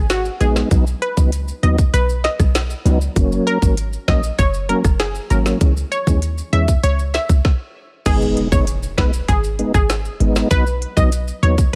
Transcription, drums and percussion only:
0.10 snare loud
0.10 closed hi-hat medium
0.10 maracas medium
0.25 maracas soft
0.41 closed hi-hat medium
0.41 maracas medium
0.56 snare medium
0.56 maracas medium
0.71 kick loud
0.71 closed hi-hat medium
0.71 maracas medium
0.87 maracas medium
1.02 closed hi-hat medium
1.17 kick medium
1.17 maracas medium
1.32 closed hi-hat medium
1.32 maracas medium
1.48 maracas medium
1.63 closed hi-hat medium
1.78 kick medium
1.78 maracas medium
1.94 closed hi-hat medium
1.94 maracas medium
2.09 maracas medium
2.24 snare medium
2.24 closed hi-hat medium
2.40 kick medium
2.40 cross-stick medium
2.40 maracas medium
2.55 snare loud
2.55 closed hi-hat medium
2.55 maracas medium
2.70 maracas soft
2.86 closed hi-hat medium
2.86 high timbale medium
2.86 maracas medium
3.01 maracas medium
3.16 kick loud
3.16 closed hi-hat medium
3.16 maracas medium
3.32 maracas medium
3.47 closed hi-hat medium
3.62 kick medium
3.62 maracas medium
3.77 closed hi-hat medium
3.77 maracas medium
3.93 maracas medium
4.08 kick medium
4.08 snare loud
4.08 closed hi-hat medium
4.23 maracas medium
4.39 kick medium
4.39 closed hi-hat medium
4.39 maracas medium
4.54 maracas medium
4.69 closed hi-hat medium
4.84 kick medium
4.84 cross-stick medium
4.84 maracas medium
5.00 snare loud
5.00 closed hi-hat medium
5.00 maracas medium
5.15 maracas soft
5.30 closed hi-hat medium
5.30 maracas medium
5.46 snare medium
5.46 maracas medium
5.61 kick loud
5.61 closed hi-hat medium
5.61 maracas medium
5.77 maracas medium
5.92 closed hi-hat medium
5.92 maracas soft
6.07 kick medium
6.07 maracas medium
6.22 closed hi-hat medium
6.22 maracas medium
6.38 maracas medium
6.53 closed hi-hat medium
6.68 kick medium
6.68 maracas medium
6.84 closed hi-hat medium
6.84 maracas medium
6.99 maracas medium
7.14 snare medium
7.14 closed hi-hat medium
7.14 maracas soft
7.29 kick medium
7.29 maracas medium
7.45 kick loud
7.45 snare medium
8.06 kick loud
8.06 closed hi-hat medium
8.06 crash loud
8.06 maracas medium
8.22 maracas medium
8.37 closed hi-hat medium
8.52 kick medium
8.52 maracas medium
8.67 closed hi-hat medium
8.67 maracas medium
8.83 maracas medium
8.98 kick medium
8.98 snare loud
8.98 closed hi-hat medium
9.13 maracas medium
9.28 kick medium
9.28 closed hi-hat medium
9.28 maracas medium
9.44 maracas medium
9.59 closed hi-hat medium
9.74 kick medium
9.74 cross-stick medium
9.74 maracas medium
9.90 snare loud
9.90 closed hi-hat medium
9.90 maracas medium
10.05 maracas soft
10.20 closed hi-hat medium
10.36 snare medium
10.36 maracas medium
10.51 kick loud
10.51 closed hi-hat medium
10.51 maracas medium
10.67 maracas medium
10.82 closed hi-hat medium
10.97 kick medium
10.97 maracas medium
11.12 closed hi-hat medium
11.12 maracas medium
11.28 maracas medium
11.43 closed hi-hat medium
11.58 kick medium
11.58 maracas medium

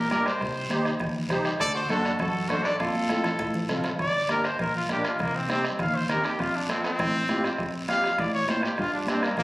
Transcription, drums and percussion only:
0.11 bombo rim medium
0.11 high conga medium
0.11 short guiro medium
0.26 bombo rim medium
0.26 short guiro medium
0.41 bombo low medium
0.41 bombo rim medium
0.41 high conga soft
0.41 long guiro medium
0.70 bombo rim medium
0.70 high conga medium
0.70 short guiro medium
0.85 bombo rim medium
0.85 short guiro medium
1.00 bombo low medium
1.00 bombo rim medium
1.00 high conga soft
1.00 low conga medium
1.00 long guiro medium
1.29 bombo low medium
1.29 bombo rim medium
1.29 high conga medium
1.29 low conga medium
1.29 short guiro medium
1.45 bombo rim medium
1.45 short guiro medium
1.59 bombo low medium
1.59 bombo rim medium
1.59 high conga soft
1.59 long guiro medium
1.89 bombo rim medium
1.89 high conga medium
1.89 short guiro medium
2.05 bombo rim medium
2.05 short guiro medium
2.19 bombo low medium
2.19 bombo rim medium
2.19 high conga soft
2.19 low conga medium
2.19 long guiro medium
2.49 bombo rim medium
2.49 high conga medium
2.49 short guiro medium
2.65 bombo rim medium
2.65 short guiro medium
2.80 bombo low medium
2.80 bombo rim medium
2.80 high conga medium
2.80 long guiro medium
2.95 high conga medium
3.09 bombo rim medium
3.09 high conga medium
3.09 short guiro medium
3.24 bombo rim medium
3.24 low conga medium
3.24 short guiro medium
3.39 bombo low medium
3.39 bombo rim medium
3.39 low conga medium
3.39 long guiro medium
3.54 low conga medium
3.69 bombo rim medium
3.69 low conga medium
3.69 short guiro medium
3.84 bombo rim medium
3.84 low conga medium
3.84 short guiro medium
3.99 bombo low medium
3.99 bombo rim medium
3.99 high conga soft
3.99 long guiro medium
4.29 bombo rim medium
4.29 high conga medium
4.29 short guiro medium
4.44 bombo rim medium
4.44 short guiro medium
4.59 bombo low medium
4.59 bombo rim medium
4.59 high conga soft
4.59 low conga medium
4.59 long guiro medium
4.89 bombo rim medium
4.89 high conga medium
4.89 short guiro medium
5.04 bombo rim medium
5.04 short guiro medium
5.19 bombo low medium
5.19 bombo rim medium
5.19 high conga soft
5.19 low conga medium
5.19 long guiro medium
5.49 bombo rim medium
5.49 high conga medium
5.49 short guiro medium
5.64 bombo rim medium
5.64 short guiro medium
5.79 bombo low medium
5.79 bombo rim medium
5.79 high conga soft
5.79 low conga medium
5.79 long guiro medium
6.09 bombo rim medium
6.09 high conga medium
6.09 short guiro medium
6.24 bombo rim medium
6.24 short guiro medium
6.39 bombo low medium
6.39 bombo rim medium
6.39 high conga soft
6.39 long guiro medium
6.69 bombo rim medium
6.69 high conga medium
6.69 short guiro medium
6.84 bombo rim medium
6.84 short guiro medium
6.99 bombo low medium
6.99 bombo rim medium
6.99 high conga soft
6.99 low conga medium
6.99 long guiro medium
7.28 bombo rim medium
7.28 high conga medium
7.28 short guiro medium
7.44 bombo rim medium
7.44 short guiro medium
7.58 bombo low medium
7.58 bombo rim medium
7.58 high conga soft
7.58 long guiro medium
7.88 bombo rim medium
7.88 high conga medium
7.88 short guiro medium
8.04 bombo rim medium
8.04 short guiro medium
8.18 bombo low medium
8.18 bombo rim medium
8.18 high conga soft
8.18 low conga medium
8.18 long guiro medium
8.48 bombo rim medium
8.48 high conga medium
8.48 short guiro medium
8.63 bombo rim medium
8.63 short guiro medium
8.77 bombo low medium
8.77 bombo rim medium
8.77 high conga soft
8.77 long guiro medium
9.07 bombo rim medium
9.07 high conga medium
9.07 short guiro medium
9.23 bombo rim medium
9.23 short guiro medium
9.37 bombo low medium
9.37 bombo rim medium
9.37 high conga soft
9.37 low conga medium
9.37 long guiro medium

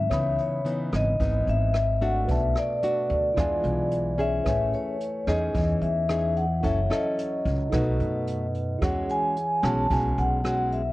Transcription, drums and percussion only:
0.11 kick medium
0.11 cross-stick medium
0.11 closed hi-hat soft
0.38 closed hi-hat soft
0.66 closed hi-hat soft
0.93 cross-stick medium
0.93 closed hi-hat soft
1.20 kick medium
1.20 closed hi-hat soft
1.47 closed hi-hat soft
1.74 cross-stick medium
1.74 closed hi-hat soft
2.01 closed hi-hat soft
2.28 kick medium
2.28 closed hi-hat soft
2.55 cross-stick medium
2.55 closed hi-hat soft
2.83 closed hi-hat soft
3.10 closed hi-hat soft
3.37 kick medium
3.37 cross-stick medium
3.37 closed hi-hat soft
3.64 closed hi-hat soft
3.92 closed hi-hat soft
4.19 closed hi-hat soft
4.46 kick medium
4.46 cross-stick medium
4.46 closed hi-hat soft
4.73 closed hi-hat soft
5.00 closed hi-hat soft
5.28 cross-stick medium
5.28 closed hi-hat soft
5.55 kick medium
5.55 closed hi-hat soft
5.82 closed hi-hat soft
6.09 cross-stick medium
6.09 closed hi-hat soft
6.37 closed hi-hat soft
6.64 kick soft
6.64 closed hi-hat soft
6.91 cross-stick medium
6.91 closed hi-hat soft
7.18 closed hi-hat soft
7.45 kick soft
7.45 closed hi-hat soft
7.72 kick medium
7.72 cross-stick medium
7.72 closed hi-hat soft
8.00 closed hi-hat soft
8.27 closed hi-hat soft
8.54 closed hi-hat soft
8.82 kick medium
8.82 cross-stick medium
8.82 closed hi-hat soft
9.09 closed hi-hat soft
9.36 closed hi-hat soft
9.64 cross-stick medium
9.64 closed hi-hat soft
9.91 kick medium
9.91 closed hi-hat soft
10.18 closed hi-hat soft
10.45 cross-stick medium
10.45 closed hi-hat soft
10.72 closed hi-hat soft

